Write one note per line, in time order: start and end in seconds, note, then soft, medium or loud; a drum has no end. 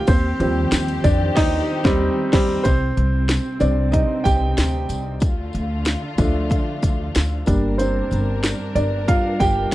0.00 0.10 G4 medium
0.00 0.10 F5 loud
0.00 0.10 G5 loud
0.07 0.34 D#2 loud
0.07 2.63 D#3 medium
0.07 2.63 C4 medium
0.07 0.40 C4 medium
0.07 2.63 G4 medium
0.07 1.07 C5 medium
0.07 kick loud
0.07 ride medium
0.07 tambourine soft
0.40 0.66 D#2 loud
0.40 1.33 F3 medium
0.40 1.33 G3 medium
0.40 1.33 C4 medium
0.40 ride medium
0.72 0.98 D#2 medium
0.72 snare loud
0.72 ride medium
0.72 tambourine medium
0.88 ride soft
1.04 1.31 F2 medium
1.04 1.35 D4 medium
1.04 1.37 D5 medium
1.04 kick medium
1.04 ride medium
1.04 tambourine medium
1.35 1.59 D#2 loud
1.35 1.58 D#4 loud
1.35 1.58 D#5 medium
1.35 kick loud
1.35 snare loud
1.35 crash medium
1.84 2.07 D#2 medium
1.84 2.06 G3 loud
1.84 2.07 C4 medium
1.84 kick loud
1.84 snare loud
2.32 2.55 D#2 medium
2.32 2.54 G3 loud
2.32 2.55 C4 loud
2.32 kick loud
2.32 snare loud
2.32 crash medium
2.64 2.91 C2 medium
2.64 5.19 C3 medium
2.64 5.19 C4 medium
2.64 3.26 C4 medium
2.64 3.24 C5 medium
2.64 kick loud
2.64 closed hi-hat medium
2.64 tambourine soft
2.97 3.37 C2 medium
2.97 closed hi-hat medium
3.29 snare loud
3.29 closed hi-hat medium
3.29 tambourine medium
3.60 4.00 C2 loud
3.60 5.17 C3 medium
3.60 5.18 C4 soft
3.60 3.91 D4 medium
3.60 3.91 D5 medium
3.60 closed hi-hat medium
3.60 tambourine soft
3.92 4.23 D#4 medium
3.92 4.26 D#5 medium
3.92 kick medium
3.92 closed hi-hat medium
3.92 tambourine soft
4.24 4.52 C2 medium
4.24 4.86 G4 medium
4.24 4.85 G5 medium
4.24 kick medium
4.24 closed hi-hat medium
4.24 tambourine medium
4.58 4.84 D2 medium
4.58 snare loud
4.58 closed hi-hat medium
4.58 tambourine medium
4.89 5.22 C2 medium
4.89 closed hi-hat medium
4.89 tambourine soft
5.20 5.48 D2 medium
5.20 7.45 D3 medium
5.20 7.45 A3 medium
5.20 7.45 F4 medium
5.20 kick loud
5.20 closed hi-hat medium
5.20 tambourine soft
5.53 5.94 D2 medium
5.53 closed hi-hat medium
5.53 tambourine soft
5.85 snare loud
5.85 closed hi-hat medium
5.85 tambourine medium
6.18 6.58 D2 loud
6.18 6.61 F3 medium
6.18 6.61 A3 medium
6.18 6.62 D4 medium
6.18 kick medium
6.18 closed hi-hat medium
6.18 tambourine soft
6.50 kick medium
6.50 closed hi-hat medium
6.50 tambourine soft
6.82 7.09 D2 medium
6.82 kick medium
6.82 closed hi-hat medium
6.82 tambourine medium
7.15 7.42 D2 medium
7.15 snare loud
7.15 closed hi-hat medium
7.15 tambourine medium
7.46 8.00 G1 medium
7.46 9.75 G3 medium
7.46 9.75 A#3 soft
7.46 8.76 D4 medium
7.46 9.75 D4 medium
7.46 9.75 A#4 medium
7.46 kick medium
7.46 closed hi-hat medium
7.46 tambourine soft
7.78 8.73 C4 medium
7.78 8.71 C5 medium
7.78 closed hi-hat medium
7.78 tambourine soft
8.11 8.51 G1 medium
8.11 closed hi-hat medium
8.11 tambourine soft
8.44 snare loud
8.44 closed hi-hat medium
8.44 tambourine medium
8.75 9.15 G1 medium
8.75 9.07 D4 medium
8.75 9.09 D5 medium
8.75 closed hi-hat medium
8.75 tambourine soft
9.08 9.16 F4 medium
9.08 9.15 F5 medium
9.08 kick medium
9.08 closed hi-hat medium
9.08 tambourine soft
9.40 9.67 G1 medium
9.40 9.75 G4 medium
9.40 9.75 G5 loud
9.40 kick medium
9.40 closed hi-hat medium
9.40 tambourine medium